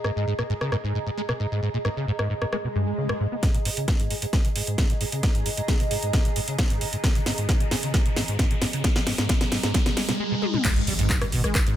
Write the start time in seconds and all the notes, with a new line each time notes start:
Already playing: G#4 D#5 A#5
0.04 G#2, cross-stick
0.16 G#2
0.27 G#2
0.39 A#2, cross-stick
0.50 G#2
0.61 C#3, cross-stick
0.72 G#2, cross-stick
0.84 G#2
0.95 G#2
1.06 G#2
1.17 G#3
1.29 B2, cross-stick
1.40 G#2
1.51 G#2
1.62 G#2
1.74 A#2
1.85 G#2, cross-stick
1.97 C#3
2.08 G#2
2.19 G#2, cross-stick
2.30 G#2
2.42 G#2, cross-stick
2.53 G#3, cross-stick, swell
2.64 B2
2.75 G2
2.87 G#2
2.98 C#3
3.09 G#2, cross-stick
3.20 G#2
3.32 B3
3.43 G#2 G#4, kick, snare, closed hi-hat, riser
3.52 A#2 D#5, closed hi-hat
3.65 G#2, open hi-hat
3.77 C#3, closed hi-hat
3.88 G#2, kick, snare, closed hi-hat
3.94 A#5
4.00 G#2, closed hi-hat
4.10 G#2, open hi-hat
4.22 G#2, closed hi-hat
4.33 G#3, kick, snare, closed hi-hat
4.45 B2, closed hi-hat
4.56 G#2, open hi-hat
4.67 G#2, closed hi-hat
4.78 G#2, kick, snare, closed hi-hat
4.90 A#2, closed hi-hat
5.01 G#2, open hi-hat
5.12 C#3, closed hi-hat
5.23 G#2, kick, snare, closed hi-hat
5.35 G#2, closed hi-hat
5.46 G#2, open hi-hat
5.57 G#2, closed hi-hat
5.68 G#3, kick, snare, closed hi-hat
5.80 B2, closed hi-hat
5.91 G#2, open hi-hat
6.03 G#2, closed hi-hat
6.13 G#2, kick, snare, closed hi-hat
6.25 A#2, closed hi-hat
6.36 G#2, open hi-hat
6.48 C#3, closed hi-hat
6.59 G#2, kick, snare, closed hi-hat
6.70 G#2, closed hi-hat
6.81 G#2, open hi-hat
6.93 G#2, closed hi-hat
7.04 G#3, kick, snare, closed hi-hat
7.15 B2, closed hi-hat
7.26 G#2, snare, open hi-hat
7.38 G#2, closed hi-hat
7.49 G#2, kick, snare, closed hi-hat
7.60 A#2, closed hi-hat
7.71 G#2, snare, open hi-hat
7.83 C#3, closed hi-hat
7.94 G#3, kick, snare, closed hi-hat
8.06 B2, closed hi-hat
8.16 G#2, snare, open hi-hat
8.28 G#2, closed hi-hat
8.39 G#2, kick, snare, closed hi-hat
8.51 A#2, closed hi-hat
8.62 G#2, snare, open hi-hat
8.73 C#3, closed hi-hat
8.84 G#3, kick, snare, closed hi-hat
8.96 B2, snare, closed hi-hat
9.07 G#2, snare, open hi-hat
9.18 G#2, snare, closed hi-hat
9.29 G#3, kick, snare, closed hi-hat
9.41 B2, snare, closed hi-hat
9.52 G#2, snare, open hi-hat
9.63 G#2, snare, closed hi-hat
9.74 G#3, kick, snare, closed hi-hat, swell
9.86 B2, snare, closed hi-hat
9.97 G#3, snare, open hi-hat
10.09 B2, snare, closed hi-hat
10.19 G#3
10.31 B2
10.42 G#3, high tom
10.54 B2, mid tom
10.65 G#2, kick, clap, closed hi-hat, crash, ride, impact
10.76 G2, closed hi-hat
10.87 G#1 G3, open hi-hat
10.99 G#1 G#2, closed hi-hat
11.10 G2, kick, clap, closed hi-hat, ride
11.21 G#2, cross-stick, closed hi-hat
11.32 G#1 B2, open hi-hat
11.44 G#1 G#3, cross-stick, closed hi-hat
11.55 B2, kick, cross-stick, clap, closed hi-hat, ride
11.67 G#2, closed hi-hat